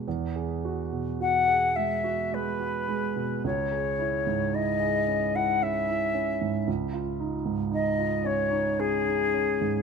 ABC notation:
X:1
M:3/4
L:1/16
Q:1/4=55
K:E
V:1 name="Flute"
z4 f2 e2 B4 | c4 d3 f e4 | z4 d2 c2 G4 |]
V:2 name="Grand piano"
E,, G F B,, F G G, F G, F G, B,, | C,, G E G,, E G C E C E C G,, | C,, ^E D G,, D E C D C D C G,, |]